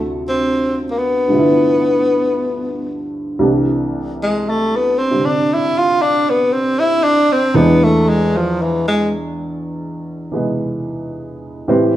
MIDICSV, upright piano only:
0, 0, Header, 1, 2, 480
1, 0, Start_track
1, 0, Key_signature, 0, "major"
1, 0, Tempo, 1043478
1, 1564, Time_signature, 4, 2, 24, 8
1, 2519, Tempo, 1034483
1, 5530, End_track
2, 0, Start_track
2, 0, Title_t, "Upright piano"
2, 0, Program_c, 0, 0
2, 0, Control_c, 0, 64, 127
2, 0, Note_on_c, 0, 38, 44
2, 0, Note_on_c, 0, 48, 41
2, 0, Note_on_c, 0, 50, 42
2, 0, Note_on_c, 0, 53, 44
2, 0, Note_on_c, 0, 64, 48
2, 589, Note_off_c, 0, 50, 0
2, 589, Note_on_c, 0, 43, 49
2, 596, Note_on_c, 0, 50, 44
2, 600, Note_off_c, 0, 53, 0
2, 604, Note_off_c, 0, 38, 0
2, 605, Note_off_c, 0, 64, 0
2, 605, Control_c, 0, 64, 0
2, 607, Note_off_c, 0, 48, 0
2, 607, Note_on_c, 0, 53, 45
2, 616, Note_on_c, 0, 57, 46
2, 626, Note_on_c, 0, 59, 42
2, 636, Note_on_c, 0, 64, 53
2, 680, Control_c, 0, 64, 127
2, 1558, Note_off_c, 0, 43, 0
2, 1558, Note_off_c, 0, 57, 0
2, 1560, Note_on_c, 0, 36, 49
2, 1562, Note_off_c, 0, 50, 0
2, 1562, Note_on_c, 0, 48, 42
2, 1562, Note_on_c, 0, 52, 40
2, 1565, Note_on_c, 0, 57, 41
2, 1567, Note_off_c, 0, 53, 0
2, 1568, Note_on_c, 0, 62, 48
2, 1570, Control_c, 0, 64, 0
2, 1577, Note_off_c, 0, 59, 0
2, 1582, Note_off_c, 0, 64, 0
2, 1665, Control_c, 0, 64, 127
2, 2343, Note_off_c, 0, 48, 0
2, 2350, Note_on_c, 0, 48, 36
2, 2355, Note_on_c, 0, 50, 30
2, 2363, Note_on_c, 0, 60, 37
2, 2364, Note_on_c, 0, 55, 36
2, 3472, Note_off_c, 0, 52, 0
2, 3477, Note_off_c, 0, 48, 0
2, 3478, Note_on_c, 0, 40, 59
2, 3479, Note_off_c, 0, 50, 0
2, 3479, Note_on_c, 0, 52, 54
2, 3480, Note_off_c, 0, 62, 0
2, 3480, Note_on_c, 0, 56, 52
2, 3481, Note_off_c, 0, 36, 0
2, 3481, Note_on_c, 0, 59, 46
2, 3483, Note_off_c, 0, 57, 0
2, 3484, Note_off_c, 0, 55, 0
2, 3484, Note_off_c, 0, 60, 0
2, 3487, Control_c, 0, 64, 0
2, 3487, Note_on_c, 0, 62, 56
2, 3563, Control_c, 0, 64, 127
2, 4758, Note_off_c, 0, 52, 0
2, 4765, Note_on_c, 0, 52, 45
2, 4766, Note_off_c, 0, 56, 0
2, 4773, Note_off_c, 0, 59, 0
2, 4773, Note_on_c, 0, 56, 43
2, 4780, Note_on_c, 0, 59, 50
2, 5391, Note_off_c, 0, 52, 0
2, 5397, Note_off_c, 0, 40, 0
2, 5397, Note_on_c, 0, 45, 52
2, 5398, Note_on_c, 0, 52, 54
2, 5399, Note_on_c, 0, 55, 52
2, 5402, Note_off_c, 0, 62, 0
2, 5403, Note_off_c, 0, 56, 0
2, 5403, Note_on_c, 0, 60, 66
2, 5405, Note_on_c, 0, 71, 49
2, 5406, Note_off_c, 0, 59, 0
2, 5406, Control_c, 0, 64, 0
2, 5493, Control_c, 0, 64, 127
2, 5530, Note_off_c, 0, 45, 0
2, 5530, Note_off_c, 0, 52, 0
2, 5530, Note_off_c, 0, 55, 0
2, 5530, Note_off_c, 0, 60, 0
2, 5530, Note_off_c, 0, 71, 0
2, 5530, End_track
0, 0, End_of_file